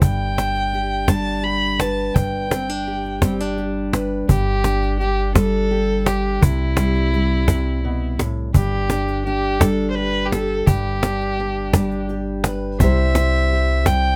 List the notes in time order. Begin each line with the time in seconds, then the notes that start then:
Already playing: G3 G4
0.02 G1 G2 G5, cajon bass
0.38 D4, cajon slap
0.55 cajon slap
0.73 G4, cajon slap
1.08 G3 D4 A5, cajon bass, cajon slap
1.43 G4 B5
1.80 B4 A5, cajon slap
2.14 G1 G2 G5, cajon bass
2.51 C4, cajon slap
2.69 D4
2.87 G4
3.05 cajon slap
3.22 G3 C4, cajon bass, cajon slap
3.40 D4
3.58 G4, cajon slap
3.93 B4, cajon slap
4.29 G1 G2 G4, cajon bass
4.64 D4, cajon slap
4.82 cajon slap
4.99 D4 G4, cajon slap
5.35 G3 D4 A4, cajon bass, cajon slap
5.71 G4
6.06 D4 G4, cajon slap
6.41 C2 C3 E4, cajon bass
6.77 G3, cajon slap
6.95 cajon slap
7.13 G3, cajon slap
7.48 C3, cajon bass, cajon slap
7.84 B2
8.19 A2, cajon slap
8.54 G1 G2 G4, cajon bass
8.90 D4, cajon slap
9.08 cajon slap
9.25 D4 G4, cajon slap
9.60 G3 D4 A4, cajon bass, cajon slap
9.90 C5
9.95 G4 B4
10.25 G4
10.31 G4 A4, cajon slap
10.66 G1 G2 G4, cajon bass
11.03 D4, cajon slap
11.21 cajon slap
11.40 D4
11.73 G3 D4, cajon bass, cajon slap
11.91 cajon slap
12.09 G4, cajon slap
12.44 B4, cajon slap
12.79 C2 C3 G3 E4 G4 E5, cajon bass, cajon slap
12.84 C5
13.15 C5, cajon slap
13.52 G4
13.86 G3 G5, cajon bass, cajon slap